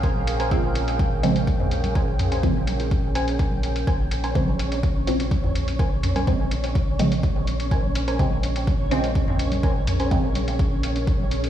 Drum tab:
HH |x-xxx-xxx-xxx-xx|x-xxx-xxx-xxx-xx|x-xxx-xxx-xxx-xx|x-xxx-xxx-xxx-xx|
T2 |-------------o--|--o-------------|-------------o--|--o-------------|
CG |-o------o------o|------o------o--|-----o------o---|---o------o-----|
BD |o---o---o---o---|o---o---o---o---|o---o---o---o---|o---o---o---o---|

HH |x-xxx-xxx-xxx-xx|x-xxx-xxx-xxx-xx|
T2 |-------------o--|--o-------------|
CG |-o------o------o|------o------o--|
BD |o---o---o---o---|o---o---o---o---|